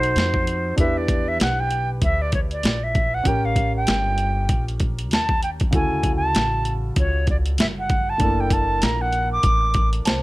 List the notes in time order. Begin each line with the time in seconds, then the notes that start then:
Already playing: B1 D#4 F#4 A4 C5
0.03 closed hi-hat
0.16 F2, snare, closed hi-hat
0.34 kick
0.47 closed hi-hat
0.76 E2 D4 E4 G4 E5, kick, closed hi-hat
0.81 B4
0.97 D5
1.08 kick, closed hi-hat
1.28 E5
1.40 B1 F#5, snare, closed hi-hat
1.60 G5
1.71 closed hi-hat
2.02 D2 E5, kick, closed hi-hat
2.22 D5
2.32 C#5, kick, closed hi-hat
2.51 D5, closed hi-hat
2.63 A#1, snare, closed hi-hat
2.83 E5
2.95 kick, closed hi-hat
3.14 F#5
3.23 A1 C#4 G4 G5, kick, closed hi-hat
3.28 A#4
3.45 F5
3.56 kick, closed hi-hat
3.76 G5
3.87 G1, snare, closed hi-hat
4.18 closed hi-hat
4.49 A#1, kick, closed hi-hat
4.68 closed hi-hat
4.80 kick, closed hi-hat
4.99 closed hi-hat
5.11 D#2 A5, snare, closed hi-hat
5.29 kick
5.43 G5, closed hi-hat
5.60 kick, closed hi-hat
5.71 D2 C#3 E4 F#4, kick, closed hi-hat
5.75 A4 G#5
6.03 kick, closed hi-hat
6.16 A5
6.35 A1, snare, closed hi-hat
6.65 closed hi-hat
6.96 C#2 C#5, kick, closed hi-hat
7.27 D5, kick, closed hi-hat
7.46 closed hi-hat
7.58 G1 E5, snare, closed hi-hat
7.79 F#5
7.90 kick, closed hi-hat
8.10 A5
8.18 F#1 A3 D4 E4, kick, closed hi-hat
8.23 A#3 A4
8.40 G5
8.50 A5, kick, closed hi-hat
8.82 A#1 A#5, snare, closed hi-hat
9.01 F#5
9.12 closed hi-hat
9.32 D6
9.43 A1, kick, closed hi-hat
9.74 kick, closed hi-hat
9.93 closed hi-hat
10.05 C2 C5 A5, snare, closed hi-hat